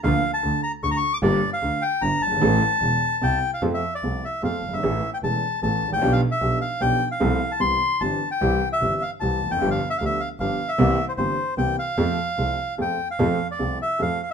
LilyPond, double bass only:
\new Staff \with { instrumentName = "Double bass" } { \clef bass \time 3/4 \key g \dorian \tempo 4 = 151 d,8 r8 d,8 r8 d,8 r8 | g,,8 r8 d,8 r8 g,,8 g,,8 | a,,8 r8 e,,8 r8 c,8 r8 | \key f \major f,8 r8 c,8 r8 f,8 g,,8 |
a,,8 r8 e,,8 r8 a,,8 a,,8 | b,,8 r8 b,,8 r8 b,,8 r8 | c,8 r8 c,8 r8 g,,8 r8 | c,8 r8 g,,8 r8 c,8 f,,8 |
g,,8 r8 d,8 r8 g,,8 r8 | c,8 r8 g,,8 r8 c,8 r8 | f,8 r8 c,8 r8 f,8 r8 | f,8 r8 c,8 r8 f,8 r8 | }